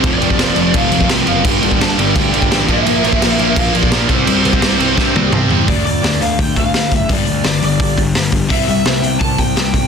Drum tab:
CC |x-x-x-x-x-x-x-x-|x-x-x-x-x-x-x-x-|x-x-x-x-x-x-x-x-|x-x-x-x---------|
HH |----------------|----------------|----------------|----------------|
SD |----o-------o---|----o-------o---|----o-------o---|----o---o-------|
T1 |----------------|----------------|----------------|----------o-----|
T2 |----------------|----------------|----------------|------------o---|
FT |----------------|----------------|----------------|--------------o-|
BD |o--o----o--o----|o--o----o--o--o-|---o----o--o--o-|---o----o-------|

CC |----------------|----------------|----------------|
HH |o-o-o-o-o-o-o-o-|o-o-o-o-o-o-o-o-|o-o-o-o-o-o-o-o-|
SD |----o-------o---|----o-------o---|----o-------o---|
T1 |----------------|----------------|----------------|
T2 |----------------|----------------|----------------|
FT |----------------|----------------|----------------|
BD |o-------o-o---o-|o-------o-o---o-|o-------o-o---o-|